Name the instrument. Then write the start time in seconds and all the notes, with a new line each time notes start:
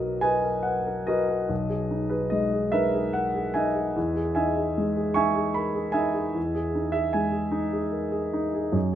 grand piano
Already playing: B1 F#3 F#4 B4 D#5
0.00 A#4
0.21 F#4 B4 D#5 G#5
0.43 A#4
0.63 B4 F#5
0.87 A#4
1.07 F#4 A#4 B4 D#5
1.29 A#4
1.49 B1
1.69 G#4
1.91 D#4
2.10 G#4 B4
2.30 G#3 D#5
2.53 G#4
2.72 D#4 A#4 B4 E5
2.94 G#4
3.13 A#4 F#5
3.35 G#4
3.54 D#4 D#5 E5 G#5
3.76 G#4
3.96 E2
4.16 G#4
4.35 D#4 D#5 E5 G#5
4.57 G#4
4.78 G#3
4.97 G#4
5.14 D#4 E5 G#5 C#6
5.36 G#4
5.54 A#4 B5
5.75 G#4
5.92 D#4 D#5 E5 G#5
6.14 G#4
6.34 E2
6.55 G#4
6.75 D#4
6.92 G#4 E5
7.13 G#3 G#5
7.32 G#4
7.52 D#4
7.73 G#4
7.92 A#4
8.12 G#4
8.33 D#4
8.54 G#4
8.73 F#2